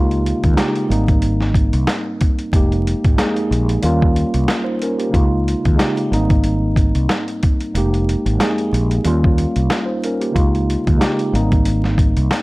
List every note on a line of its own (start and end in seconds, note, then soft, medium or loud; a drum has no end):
0.00 0.32 C#2 loud
0.00 0.33 C#3 medium
0.00 0.33 G#3 medium
0.00 0.34 A#3 medium
0.00 0.34 D#4 medium
0.00 0.35 F4 medium
0.11 closed hi-hat soft
0.26 closed hi-hat medium
0.44 0.55 D#2 medium
0.44 kick loud
0.44 closed hi-hat medium
0.53 0.88 C#3 medium
0.53 0.88 G#3 medium
0.53 0.89 A#3 medium
0.53 0.89 D#4 medium
0.57 0.90 G4 medium
0.57 snare loud
0.57 snare medium
0.57 closed hi-hat medium
0.76 closed hi-hat soft
0.88 1.69 G#1 medium
0.88 1.94 G#2 medium
0.88 1.95 G3 medium
0.88 1.95 A#3 medium
0.88 1.96 C4 medium
0.88 closed hi-hat medium
0.92 1.96 D#4 medium
1.08 kick loud
1.08 closed hi-hat medium
1.22 closed hi-hat medium
1.41 snare soft
1.54 kick medium
1.54 closed hi-hat medium
1.73 1.85 C2 medium
1.73 closed hi-hat medium
1.87 snare loud
1.87 closed hi-hat medium
2.21 kick medium
2.21 closed hi-hat medium
2.39 closed hi-hat soft
2.52 2.93 F1 loud
2.52 2.95 F2 medium
2.52 2.96 G#3 medium
2.52 2.96 A#3 medium
2.52 2.97 D#4 medium
2.52 kick loud
2.52 closed hi-hat loud
2.56 2.97 G4 medium
2.72 closed hi-hat soft
2.87 closed hi-hat medium
3.04 3.15 G#1 medium
3.04 kick loud
3.04 closed hi-hat medium
3.15 3.82 F2 medium
3.15 3.83 G#3 medium
3.15 3.82 A#3 medium
3.15 3.84 D#4 medium
3.15 snare loud
3.15 snare medium
3.15 closed hi-hat medium
3.20 3.84 G#4 medium
3.36 closed hi-hat soft
3.51 3.76 A#1 medium
3.51 closed hi-hat medium
3.69 closed hi-hat medium
3.81 4.87 D#2 medium
3.81 4.23 D#2 loud
3.81 4.88 G3 medium
3.81 4.49 A#3 loud
3.81 4.49 C#4 medium
3.81 closed hi-hat loud
3.85 4.50 F4 loud
4.02 kick medium
4.16 closed hi-hat medium
4.34 4.46 C2 medium
4.34 closed hi-hat medium
4.48 snare loud
4.48 closed hi-hat medium
4.64 4.79 D#4 medium
4.64 4.79 C5 medium
4.82 5.00 C#4 medium
4.82 4.99 A#4 medium
4.82 closed hi-hat medium
4.99 5.10 A#3 medium
4.99 5.30 G4 medium
4.99 closed hi-hat soft
5.09 5.54 C#3 medium
5.09 5.55 G#3 medium
5.09 5.55 A#3 medium
5.09 5.56 D#4 medium
5.14 5.54 C#2 loud
5.14 5.57 F4 medium
5.14 kick loud
5.14 closed hi-hat loud
5.48 closed hi-hat medium
5.65 5.76 D#2 loud
5.65 kick loud
5.65 closed hi-hat medium
5.75 6.10 C#3 medium
5.75 6.10 G#3 medium
5.75 6.11 A#3 medium
5.75 6.11 D#4 medium
5.79 6.12 G4 medium
5.79 snare loud
5.79 snare medium
5.79 closed hi-hat medium
5.97 closed hi-hat soft
6.10 6.91 G#1 medium
6.10 7.16 G#2 medium
6.10 7.16 G3 medium
6.10 7.17 A#3 medium
6.10 7.18 C4 medium
6.10 closed hi-hat medium
6.14 7.18 D#4 medium
6.30 kick loud
6.30 closed hi-hat medium
6.44 closed hi-hat medium
6.76 kick medium
6.76 closed hi-hat medium
6.95 7.06 C2 medium
6.95 closed hi-hat medium
7.09 snare loud
7.09 snare medium
7.09 closed hi-hat medium
7.28 closed hi-hat soft
7.43 kick medium
7.43 closed hi-hat medium
7.61 closed hi-hat soft
7.74 8.14 F1 loud
7.74 8.17 F2 medium
7.74 8.17 G#3 medium
7.74 8.18 A#3 medium
7.74 8.19 D#4 medium
7.74 closed hi-hat loud
7.78 8.19 G4 medium
7.94 closed hi-hat soft
8.09 closed hi-hat medium
8.26 8.37 G#1 medium
8.26 closed hi-hat medium
8.37 9.04 F2 medium
8.37 9.04 G#3 medium
8.37 9.04 A#3 medium
8.37 9.05 D#4 medium
8.37 snare loud
8.37 snare medium
8.37 closed hi-hat medium
8.42 9.06 G#4 medium
8.58 closed hi-hat soft
8.73 8.98 A#1 medium
8.73 closed hi-hat medium
8.91 closed hi-hat medium
9.03 10.09 D#2 medium
9.03 9.45 D#2 loud
9.03 10.10 G3 medium
9.03 9.70 A#3 loud
9.03 9.71 C#4 medium
9.03 closed hi-hat medium
9.07 9.71 F4 loud
9.24 kick medium
9.38 closed hi-hat medium
9.56 9.67 C2 medium
9.56 closed hi-hat medium
9.70 snare loud
9.70 snare medium
9.70 closed hi-hat medium
9.86 10.01 D#4 medium
9.86 10.01 C5 medium
10.04 10.22 C#4 medium
10.04 10.21 A#4 medium
10.04 closed hi-hat medium
10.20 10.32 A#3 medium
10.20 10.52 G4 medium
10.20 closed hi-hat soft
10.31 10.76 C#3 medium
10.31 10.77 G#3 medium
10.31 10.77 A#3 medium
10.31 10.78 D#4 medium
10.35 10.75 C#2 loud
10.35 10.78 F4 medium
10.35 kick loud
10.35 closed hi-hat loud
10.55 closed hi-hat soft
10.70 closed hi-hat medium
10.87 10.98 D#2 medium
10.87 kick loud
10.87 closed hi-hat medium
10.96 11.31 C#3 medium
10.96 11.32 G#3 medium
10.96 11.32 A#3 medium
10.96 11.33 D#4 medium
11.00 11.33 G4 medium
11.00 snare loud
11.00 snare medium
11.00 closed hi-hat loud
11.19 closed hi-hat soft
11.31 12.13 G#1 medium
11.31 12.38 G#2 medium
11.31 12.38 G3 medium
11.31 12.39 A#3 medium
11.31 12.39 C4 medium
11.31 closed hi-hat medium
11.36 12.40 D#4 medium
11.52 kick loud
11.52 closed hi-hat medium
11.65 closed hi-hat medium
11.84 snare soft
11.98 kick medium
11.98 closed hi-hat medium
12.17 12.28 C2 medium
12.17 closed hi-hat medium
12.31 snare loud
12.31 closed hi-hat medium